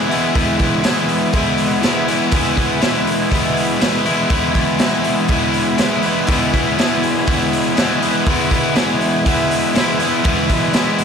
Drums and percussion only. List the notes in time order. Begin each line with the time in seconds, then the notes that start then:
0.11 open hi-hat
0.35 kick, open hi-hat
0.59 kick, open hi-hat
0.84 snare, open hi-hat
1.08 open hi-hat
1.33 kick, open hi-hat
1.58 open hi-hat
1.83 snare, open hi-hat
2.08 open hi-hat
2.31 kick, open hi-hat
2.57 kick, open hi-hat
2.81 snare, open hi-hat
3.07 open hi-hat
3.32 kick, open hi-hat
3.57 open hi-hat
3.81 snare, open hi-hat
4.06 open hi-hat
4.30 kick, open hi-hat
4.55 kick, open hi-hat
4.79 snare, open hi-hat
5.04 open hi-hat
5.28 kick, open hi-hat
5.54 open hi-hat
5.78 snare, open hi-hat
6.03 open hi-hat
6.27 kick, open hi-hat
6.54 kick, open hi-hat
6.78 snare, open hi-hat
7.03 open hi-hat
7.27 kick, open hi-hat
7.53 open hi-hat
7.77 snare, open hi-hat
8.03 open hi-hat
8.26 kick, open hi-hat
8.51 kick, open hi-hat
8.75 snare, open hi-hat
9.01 open hi-hat
9.26 kick, open hi-hat
9.51 open hi-hat
9.75 snare, open hi-hat
10.00 open hi-hat
10.24 kick, open hi-hat
10.49 kick, open hi-hat
10.73 snare, open hi-hat
10.99 open hi-hat